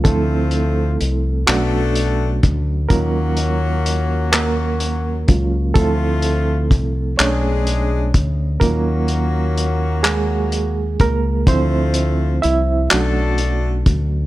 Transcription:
0.04 0.96 D2 medium
0.04 1.44 F3 medium
0.04 0.98 F3 medium
0.04 0.98 A3 medium
0.04 1.44 A3 medium
0.04 0.98 C4 medium
0.04 1.44 C4 medium
0.04 1.44 E4 medium
0.04 0.98 F4 medium
0.04 1.51 A4 medium
0.04 kick loud
0.04 closed hi-hat medium
0.51 closed hi-hat soft
1.01 1.44 C2 medium
1.01 closed hi-hat soft
1.47 2.39 B1 loud
1.47 2.87 F#3 medium
1.47 2.86 A3 medium
1.47 2.41 A3 medium
1.47 2.87 C#4 soft
1.47 2.41 D4 medium
1.47 2.87 D4 medium
1.47 2.86 F#4 medium
1.47 2.41 F#4 medium
1.47 2.41 A4 medium
1.47 clap loud
1.47 closed hi-hat medium
1.96 closed hi-hat medium
2.43 2.87 D2 loud
2.43 kick medium
2.43 closed hi-hat soft
2.89 5.25 D#2 loud
2.89 5.26 F#3 medium
2.89 5.24 F#3 medium
2.89 5.25 A#3 medium
2.89 4.30 A#3 medium
2.89 5.27 C#4 medium
2.89 5.25 C#4 medium
2.89 5.27 F4 medium
2.89 5.24 F#4 medium
2.89 4.31 A#4 medium
2.89 kick loud
2.89 closed hi-hat medium
3.37 closed hi-hat soft
3.86 closed hi-hat soft
4.32 5.72 A#3 medium
4.32 5.80 A#4 medium
4.32 clap loud
4.32 closed hi-hat medium
4.80 closed hi-hat medium
5.28 5.73 C#2 loud
5.28 5.72 F#3 medium
5.28 5.72 C#4 soft
5.28 5.72 F4 medium
5.28 kick medium
5.28 closed hi-hat medium
5.74 6.72 D2 loud
5.74 6.39 F3 medium
5.74 6.69 F3 medium
5.74 6.70 A3 medium
5.74 7.15 A3 medium
5.74 6.39 C4 soft
5.74 6.69 C4 medium
5.74 6.39 E4 medium
5.74 6.69 F4 medium
5.74 7.22 A4 medium
5.74 kick loud
5.74 closed hi-hat medium
6.22 closed hi-hat soft
6.71 7.15 C2 medium
6.71 kick medium
6.71 closed hi-hat soft
7.17 8.11 B1 loud
7.17 8.12 G#3 medium
7.17 7.82 A3 soft
7.17 8.58 C#4 medium
7.17 8.12 D4 medium
7.17 7.82 D4 medium
7.17 8.12 G#4 medium
7.17 8.65 C#5 medium
7.17 clap loud
7.17 closed hi-hat medium
7.67 closed hi-hat medium
8.14 8.58 D2 medium
8.14 kick medium
8.14 closed hi-hat medium
8.60 10.96 D#2 medium
8.60 9.24 F#3 medium
8.60 10.96 F#3 medium
8.60 10.96 A#3 medium
8.60 10.01 A#3 medium
8.60 10.96 C#4 medium
8.60 9.25 C#4 medium
8.60 9.25 F4 medium
8.60 10.96 F#4 medium
8.60 10.08 A#4 medium
8.60 kick loud
8.60 closed hi-hat medium
9.08 closed hi-hat soft
9.58 closed hi-hat soft
10.03 10.96 G#3 medium
10.03 10.95 G#4 medium
10.03 clap loud
10.03 closed hi-hat medium
10.52 closed hi-hat soft
11.00 11.44 C#2 medium
11.00 11.23 A#3 medium
11.00 11.22 A#4 loud
11.00 kick medium
11.00 closed hi-hat soft
11.47 12.39 D2 loud
11.47 12.41 F3 medium
11.47 12.11 F3 medium
11.47 12.40 A3 medium
11.47 12.41 C4 medium
11.47 12.40 C4 medium
11.47 12.11 E4 medium
11.47 12.41 F4 medium
11.47 12.46 C5 loud
11.47 kick loud
11.47 closed hi-hat medium
11.94 closed hi-hat soft
12.42 12.87 C2 loud
12.42 12.88 E4 medium
12.42 12.92 E5 loud
12.42 closed hi-hat soft
12.89 13.83 B1 medium
12.89 14.27 F#3 medium
12.89 13.83 A3 medium
12.89 14.27 A3 medium
12.89 14.27 C#4 soft
12.89 13.83 D4 medium
12.89 14.27 D4 medium
12.89 13.83 F#4 medium
12.89 14.27 F#4 medium
12.89 13.83 A4 medium
12.89 clap loud
12.89 closed hi-hat medium
13.38 closed hi-hat soft
13.86 14.27 D2 medium
13.86 kick loud
13.86 closed hi-hat soft

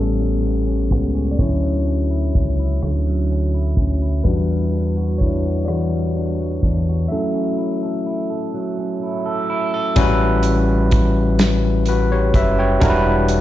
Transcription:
0.00 0.92 A1 medium
0.00 1.48 A2 medium
0.00 0.19 G3 soft
0.00 1.41 G3 soft
0.00 0.42 B3 medium
0.00 1.40 B3 medium
0.00 0.66 C#4 medium
0.00 1.40 C#4 medium
0.00 1.41 G4 medium
0.00 1.41 A4 medium
0.20 1.49 G3 medium
0.43 0.90 B3 soft
0.43 closed hi-hat soft
0.67 1.14 C#4 medium
0.91 1.35 C#2 medium
0.91 1.48 B3 medium
0.91 kick medium
0.91 closed hi-hat soft
1.15 1.87 C#4 medium
1.31 1.39 D5 medium
1.39 2.30 D2 medium
1.39 2.83 D3 medium
1.39 2.78 F#3 medium
1.39 2.78 C#4 soft
1.39 3.74 E4 medium
1.39 3.73 C#5 medium
1.39 kick loud
1.39 closed hi-hat medium
1.63 3.07 F#3 soft
1.86 2.34 C#4 medium
1.86 closed hi-hat soft
2.10 2.59 E4 medium
2.34 2.79 C#2 medium
2.34 3.29 C#4 medium
2.34 kick medium
2.34 closed hi-hat soft
2.59 3.54 E4 medium
2.82 3.74 D2 medium
2.82 4.26 D3 medium
2.82 cross-stick medium
2.82 closed hi-hat medium
3.07 4.50 F#3 medium
3.29 3.77 C#4 soft
3.29 closed hi-hat soft
3.54 4.02 E4 medium
3.77 4.21 D2 medium
3.77 4.35 C#4 medium
3.77 kick medium
3.77 closed hi-hat soft
4.02 4.76 E4 medium
4.24 6.59 E2 medium
4.24 5.69 E3 medium
4.24 4.88 G3 medium
4.24 5.17 D4 medium
4.24 4.89 F#4 medium
4.24 5.22 B4 medium
4.24 kick loud
4.24 closed hi-hat medium
4.50 5.92 G3 medium
4.72 5.20 D4 medium
4.72 closed hi-hat medium
4.97 5.45 F#4 medium
5.18 6.16 D4 medium
5.18 5.65 E4 medium
5.18 5.63 C#5 medium
5.18 kick medium
5.18 closed hi-hat soft
5.46 6.40 F#4 medium
5.65 7.07 F#4 medium
5.65 7.13 D5 medium
5.65 cross-stick medium
5.65 closed hi-hat medium
5.69 8.57 E3 medium
5.94 7.11 G3 medium
6.15 6.62 D4 medium
6.15 closed hi-hat soft
6.40 6.89 F#4 medium
6.63 7.07 E2 medium
6.63 7.20 D4 medium
6.63 kick medium
6.63 closed hi-hat soft
6.89 7.58 F#4 medium
7.08 8.54 F#3 medium
7.08 9.92 A3 medium
7.08 9.92 C#4 soft
7.08 9.93 E4 medium
7.08 8.98 A4 medium
7.08 8.96 E5 loud
7.35 8.78 C#4 medium
7.58 8.06 E4 medium
7.83 8.30 A4 medium
8.06 9.02 E4 medium
8.30 9.25 A4 medium
8.54 10.56 F#3 medium
8.79 10.56 C#4 medium
9.03 9.49 E4 medium
9.26 9.73 A4 medium
9.50 10.56 E4 medium
9.74 10.56 A4 medium
9.96 12.31 A1 loud
9.96 11.23 G3 medium
9.96 11.23 C#4 medium
9.96 11.24 E4 medium
9.96 11.24 F#4 medium
9.96 11.24 B4 loud
9.96 kick loud
9.96 closed hi-hat medium
10.43 closed hi-hat medium
10.91 kick loud
10.91 closed hi-hat medium
11.39 snare loud
11.39 closed hi-hat medium
11.86 12.11 F#4 medium
11.86 12.10 B4 medium
11.86 closed hi-hat medium
12.12 12.34 G4 medium
12.12 12.34 C#5 medium
12.34 12.78 F#1 medium
12.34 12.58 B4 medium
12.34 12.57 E5 medium
12.34 kick loud
12.34 closed hi-hat soft
12.59 13.04 C#5 medium
12.59 13.04 G5 medium
12.80 13.41 E1 loud
12.80 13.41 G3 loud
12.80 13.41 D4 loud
12.80 13.41 E4 loud
12.80 13.41 F#4 medium
12.80 12.89 A#4 medium
12.80 kick loud
12.80 closed hi-hat medium
12.90 13.41 B4 loud
13.28 closed hi-hat medium

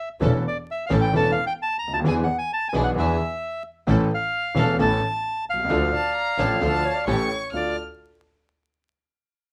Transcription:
0.20 0.41 E1 medium
0.20 0.41 E1 loud
0.20 0.41 E2 medium
0.20 0.41 E3 medium
0.20 0.40 A3 medium
0.20 0.41 C#4 medium
0.20 0.41 E4 medium
0.20 0.41 A4 medium
0.48 0.57 D5 medium
0.71 0.85 E5 medium
0.87 1.10 A1 medium
0.87 1.10 A2 medium
0.87 1.10 E3 medium
0.87 1.10 A3 medium
0.87 1.10 C#4 medium
0.87 1.10 E4 medium
0.87 1.10 A4 medium
0.87 0.93 F5 medium
0.91 1.10 A4 medium
1.01 1.14 G5 medium
1.13 1.33 E1 medium
1.13 1.33 E2 medium
1.13 1.33 E3 medium
1.13 1.33 A3 medium
1.13 1.33 C#4 medium
1.13 1.33 E4 medium
1.13 1.33 A4 medium
1.13 1.31 A5 medium
1.32 1.45 F5 loud
1.47 1.53 G5 loud
1.62 1.77 A5 loud
1.79 2.04 D2 medium
1.79 1.93 A#5 loud
1.87 1.94 C#2 medium
1.93 1.99 D2 medium
1.93 2.00 A5 loud
1.99 2.05 D#2 medium
2.04 2.24 E2 medium
2.04 2.24 E2 loud
2.04 2.24 E3 medium
2.04 2.24 B3 medium
2.04 2.24 D4 medium
2.04 2.25 D4 medium
2.04 2.25 E4 medium
2.04 2.24 G#4 medium
2.04 2.25 G#4 medium
2.08 2.14 G#5 loud
2.24 2.37 F#5 medium
2.38 2.52 G#5 loud
2.53 2.68 A5 medium
2.69 2.75 G#5 medium
2.73 2.93 B1 medium
2.73 2.93 B2 medium
2.73 2.93 E3 medium
2.73 2.93 B3 medium
2.73 2.93 D4 medium
2.73 2.94 D4 medium
2.73 2.94 E4 medium
2.73 2.93 G#4 medium
2.73 2.94 G#4 medium
2.84 2.90 F#5 medium
2.95 3.16 E2 medium
2.95 3.16 E2 loud
2.95 3.16 E3 medium
2.95 3.16 B3 medium
2.95 3.15 D4 medium
2.95 3.16 D4 medium
2.95 3.16 E4 medium
2.95 3.16 G#4 medium
2.99 3.63 E5 medium
3.87 4.07 A1 medium
3.87 4.07 A1 loud
3.87 4.07 A2 medium
3.87 4.07 E3 medium
3.87 4.07 A3 medium
3.87 4.07 C#4 medium
3.87 4.07 E4 medium
3.87 4.07 A4 medium
3.87 4.07 A4 loud
4.14 4.77 F5 medium
4.55 4.75 E1 medium
4.55 4.75 E2 medium
4.55 4.75 E3 medium
4.55 4.75 A3 medium
4.55 4.75 C#4 medium
4.55 4.75 E4 medium
4.55 4.75 A4 medium
4.55 4.76 A4 loud
4.79 4.98 A1 loud
4.79 4.99 A1 medium
4.79 4.98 A2 medium
4.79 4.98 E3 medium
4.79 4.98 A3 medium
4.79 4.98 C#4 medium
4.79 4.98 E4 medium
4.79 4.98 A4 loud
4.79 4.99 A4 medium
4.79 5.45 A5 loud
5.48 5.69 C2 medium
5.48 7.05 F5 medium
5.54 5.59 B1 medium
5.59 5.65 C2 medium
5.64 5.70 C#2 medium
5.69 5.89 D2 medium
5.69 5.89 D2 loud
5.69 5.89 D3 medium
5.69 5.89 F3 medium
5.69 5.89 A3 medium
5.69 5.89 D4 medium
5.69 5.89 F4 medium
5.69 5.89 A4 medium
5.93 6.40 D5 loud
5.93 6.14 A5 medium
6.16 6.40 A#5 medium
6.38 6.58 A1 medium
6.38 6.58 A2 medium
6.38 6.58 F3 medium
6.38 6.58 A3 medium
6.38 6.58 D4 medium
6.38 6.58 F4 medium
6.38 6.58 A4 loud
6.38 6.58 A4 medium
6.38 6.63 C#5 medium
6.38 6.61 A5 medium
6.61 6.81 D2 medium
6.61 6.81 D3 medium
6.61 6.81 F3 medium
6.61 6.81 A3 medium
6.61 6.80 D4 medium
6.61 6.81 D4 medium
6.61 6.81 F4 medium
6.61 6.81 A4 medium
6.61 6.86 D5 loud
6.61 7.04 A5 loud
6.85 6.94 C#5 loud
6.95 7.09 D5 loud
7.07 7.27 A1 medium
7.07 7.27 A2 medium
7.07 7.27 E3 medium
7.07 7.27 A3 medium
7.07 7.27 C#4 medium
7.07 7.27 G4 medium
7.07 7.27 A4 medium
7.07 7.54 C#5 medium
7.07 7.50 C#6 medium
7.53 7.72 D2 medium
7.53 7.73 D2 medium
7.53 7.73 A3 soft
7.53 7.72 D4 medium
7.53 7.72 D4 soft
7.53 7.72 F4 medium
7.53 7.73 F4 medium
7.53 7.72 A4 medium
7.53 7.76 D5 medium
7.53 7.75 F5 medium
7.53 7.75 F6 medium

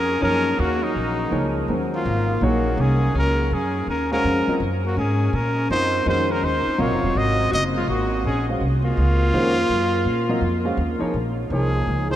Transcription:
0.00 0.21 F2 medium
0.00 0.20 C#4 medium
0.00 0.22 A#4 loud
0.20 0.57 F#2 medium
0.20 0.77 F3 medium
0.20 0.77 A#3 medium
0.20 0.59 C#4 medium
0.20 0.77 D#4 medium
0.20 0.78 G#4 medium
0.20 0.61 A#4 medium
0.20 0.78 C#5 medium
0.58 0.94 D#2 medium
0.58 0.84 A#3 medium
0.58 0.85 F#4 medium
0.82 1.56 F#3 medium
0.82 1.56 D#4 medium
0.95 1.31 A#1 medium
1.31 1.67 C#2 medium
1.31 1.67 F3 medium
1.31 1.67 A#3 soft
1.31 1.67 D#4 medium
1.31 1.67 G#4 medium
1.31 1.67 C#5 medium
1.68 2.04 D#2 medium
1.68 2.24 D#3 medium
1.68 2.25 F#3 medium
1.68 2.24 G#3 soft
1.68 2.24 C#4 soft
1.68 2.25 C5 medium
1.93 2.43 A#3 medium
1.93 2.46 F4 medium
2.05 2.41 G#1 medium
2.41 2.77 A#1 medium
2.41 3.44 F#3 medium
2.41 3.44 A#3 medium
2.41 2.82 A#3 medium
2.41 3.44 D#4 medium
2.41 2.82 F#4 medium
2.41 3.44 G#4 medium
2.41 3.44 C#5 medium
2.77 3.13 C2 medium
2.77 3.14 C#4 medium
2.77 3.16 G#4 medium
3.14 3.50 C#2 medium
3.14 3.52 C#4 medium
3.14 3.55 A#4 medium
3.51 3.86 F#2 medium
3.51 3.88 C#4 medium
3.51 3.89 G#4 medium
3.87 4.22 D#2 medium
3.87 4.11 C#4 medium
3.87 4.11 A#4 medium
4.11 4.45 G#3 medium
4.11 4.45 C#4 medium
4.11 4.58 C#4 medium
4.11 4.46 F#4 medium
4.11 4.58 A#4 medium
4.11 4.46 C5 medium
4.11 4.46 F5 medium
4.24 4.46 F2 medium
4.47 4.59 F#3 medium
4.47 4.60 C4 medium
4.47 4.60 F4 soft
4.47 4.60 A#4 soft
4.47 4.60 D#5 medium
4.47 muted upright bass stroke soft
4.60 4.96 F#2 medium
4.86 4.96 A#3 medium
4.86 4.97 F#4 medium
4.97 5.32 G#2 medium
4.97 5.33 C#4 medium
4.97 5.37 G#4 medium
5.33 5.68 A#2 medium
5.33 5.69 C#4 medium
5.33 5.70 A#4 medium
5.70 6.05 F#2 medium
5.70 6.06 F#3 medium
5.70 6.06 C4 soft
5.70 6.05 D#4 medium
5.70 6.06 F4 soft
5.70 6.06 A#4 soft
5.70 6.04 C5 medium
5.70 6.06 D#5 medium
6.06 6.41 F2 medium
6.06 6.62 D#3 medium
6.06 6.62 G#3 medium
6.06 6.62 C#4 medium
6.06 6.31 D#4 medium
6.06 6.62 F#4 medium
6.06 6.62 C5 medium
6.06 6.33 C5 medium
6.29 6.44 C#4 medium
6.29 6.46 A#4 medium
6.43 6.65 D#2 medium
6.43 6.81 D#4 medium
6.43 6.82 C5 medium
6.66 muted upright bass stroke soft
6.78 6.91 A#1 medium
6.78 7.80 C3 medium
6.78 7.80 F#3 medium
6.78 7.17 F4 medium
6.78 7.81 A#4 medium
6.78 7.19 C#5 medium
6.78 7.81 D#5 medium
6.78 7.80 F5 medium
6.91 7.03 F#1 medium
7.03 7.14 D#1 medium
7.15 7.51 G#1 medium
7.15 7.50 F#4 medium
7.15 7.53 D#5 loud
7.51 7.87 F#1 medium
7.51 7.62 F#4 medium
7.51 7.64 D#5 loud
7.75 7.87 G#3 medium
7.75 7.88 F4 medium
7.87 8.23 G#1 medium
7.87 8.22 A#3 medium
7.87 8.22 F#4 medium
8.24 8.59 A#1 medium
8.24 8.47 C#4 medium
8.24 8.47 G#4 medium
8.49 8.60 G#3 medium
8.49 8.60 C#4 medium
8.49 8.60 F#4 medium
8.49 8.60 C5 soft
8.49 8.60 F5 medium
8.61 8.96 C2 medium
8.84 10.74 A#3 loud
8.84 10.75 F4 loud
8.97 9.32 C#2 medium
9.33 9.68 F2 medium
9.33 9.55 D#3 medium
9.33 9.55 G#3 medium
9.33 9.55 C#4 medium
9.33 9.55 F#4 medium
9.33 9.55 C5 medium
9.69 10.04 F#2 medium
10.05 10.41 A#2 medium
10.29 10.41 F#3 medium
10.29 10.41 C4 medium
10.29 10.41 F4 medium
10.29 10.41 A#4 medium
10.29 10.41 D#5 medium
10.41 10.77 F2 medium
10.64 10.77 G#3 medium
10.64 10.76 C#4 medium
10.64 10.77 F#4 medium
10.64 10.77 C5 soft
10.64 10.77 F5 medium
10.77 11.00 D#2 medium
10.99 11.12 F3 medium
10.99 11.12 A#3 medium
10.99 11.12 D#4 medium
10.99 11.12 G#4 medium
10.99 11.13 C#5 medium
10.99 muted upright bass stroke soft
11.14 11.49 A#1 medium
11.50 11.86 C2 medium
11.50 12.06 F3 medium
11.50 12.06 A#3 soft
11.50 12.06 D#4 soft
11.50 12.06 G#4 medium
11.50 12.08 G#4 medium
11.50 12.07 C#5 medium
11.87 12.16 C#2 medium
12.10 12.16 F3 medium
12.10 12.16 A#3 medium
12.10 12.16 D#4 soft
12.10 12.16 G#4 medium
12.10 12.16 C5 medium

